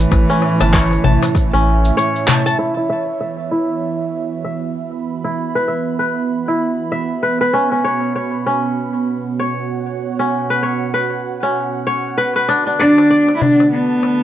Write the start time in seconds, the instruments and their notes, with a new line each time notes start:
Already playing: analog synth pad A2 A3 E4 C#5 E5, cello E3, kora C#4 C#5
0.12 analog synth bass A1, kick, darbuka tek, cabasa
0.29 kora C#4, cabasa
0.42 darbuka ka
0.60 analog synth bass G1, kora A5, darbuka tek, cabasa
0.73 kora C#5, kick, clap, cabasa
0.91 darbuka ka, cabasa
1.04 analog synth bass A1, kora A5, darbuka dum
1.22 darbuka ka, darbuka tek, cabasa
1.35 kick, darbuka ka, cabasa
1.53 analog synth bass A1, kora C#4, cabasa
1.85 cabasa
1.97 kora C#5, cabasa
2.16 cabasa
2.28 kora A5, clap, darbuka dum
2.46 kora A5, darbuka ka, cabasa
2.59 analog synth pad E3, kora E4
2.77 kora E4
2.90 kora E5
3.08 analog synth pad B3
3.21 kora E5
3.51 kora E4
3.92 analog synth pad F#4
4.44 kora E5
4.59 analog synth pad B5
5.24 kora E4
5.55 kora B4
5.68 kora E5
5.99 kora B4
6.48 kora E4
6.92 kora E5
7.23 kora B4
7.41 kora B4
7.53 analog synth pad B2, kora C#4
7.72 kora C#4
7.84 kora C#5
8.15 kora C#5
8.46 kora C#4
9.24 analog synth pad C#5 F#5
9.39 kora C#5
10.19 kora C#4
10.50 kora B4
10.63 kora C#5
10.94 kora B4
11.43 kora C#4
11.87 kora C#5
12.18 kora B4
12.36 kora B4
12.48 analog synth pad D3, kora D4, darbuka tek
12.67 kora D4
12.79 cello D4, kora D5, darbuka ka
12.98 analog synth pad A5, darbuka tek
13.08 analog synth pad A3, kora D5
13.28 darbuka ka
13.36 cello E4
13.41 cello D4, darbuka dum
13.60 darbuka tek
13.72 cello B3
14.03 darbuka tek